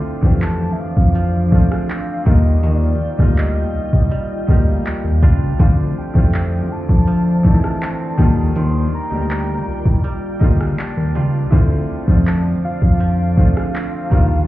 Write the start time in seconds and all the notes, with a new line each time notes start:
Already playing: D3 A3 C4 D4 E4 F4 C5 D5
0.21 F2 E3 A3 C4 D4, kick
0.26 G4
0.41 F3 A5, clap, closed hi-hat
0.73 E5
0.79 F2 F5
0.97 F2, kick
1.15 F3, closed hi-hat
1.51 F3 A3 C4 D4 F5, kick
1.55 F4
1.72 cross-stick
1.89 C4, clap, closed hi-hat
2.25 D#2 D3 D#3 G3 A#3 F4 D#5 F5 G5, kick, closed hi-hat
2.29 F4
2.63 D#2 D#3 D5, closed hi-hat
3.17 D2 G3 A#3 D#4, kick, cross-stick
3.22 F4
3.37 G3 D#5, clap, closed hi-hat
3.75 C2
3.93 C2, kick
4.11 G3, closed hi-hat
4.47 D2 G3 A#3 D#4 F4, kick
4.52 G4
4.85 clap, closed hi-hat
5.05 D#2
5.23 C#2 G3 D4 F4, kick, closed hi-hat
5.58 D2 D3 F3 A3 C4 D4 C5 D5 F5, kick, closed hi-hat
5.63 F4
5.98 G5
6.13 F2 A3 C4 D4 E4, kick
6.18 F4
6.34 F3, clap, closed hi-hat
6.71 F2 A5
6.89 F2, kick
7.08 F3, closed hi-hat
7.43 E3 A3 C4 D4, kick
7.48 D#4
7.54 E4
7.64 cross-stick
7.82 C4, clap, closed hi-hat
8.17 D#2 D#3 G3 A#3 D4 F4 D5 G5, kick, closed hi-hat
8.22 F4
8.56 D#2 D#3 C6, closed hi-hat
8.95 A#5
9.10 D2 G3 A#3 D4 D#4
9.14 G4
9.30 G3, clap, closed hi-hat
9.68 C2
9.86 C2, kick
10.04 G3, closed hi-hat
10.39 D2 G3 A#3 D4 D#4, kick
10.44 F4
10.61 cross-stick
10.78 D4, clap, closed hi-hat
10.97 D#2
11.15 C#2 G3 D4 F4, closed hi-hat
11.50 D2 D3 A3 C4 D4 E4 C5 D5 A5, kick, closed hi-hat
11.55 F4
12.06 F2 F3 A3 C4 D4, kick
12.11 F4
12.26 F3 A5, clap, closed hi-hat
12.64 F2 F5
12.82 F2, kick
13.00 F3, closed hi-hat
13.36 F3 A3 C4 D4 F5, kick
13.41 F4
13.57 cross-stick
13.75 C4, clap, closed hi-hat
14.10 D#2 D3 D#3 G3 A#3 F4 F5 G5, kick, closed hi-hat
14.14 F4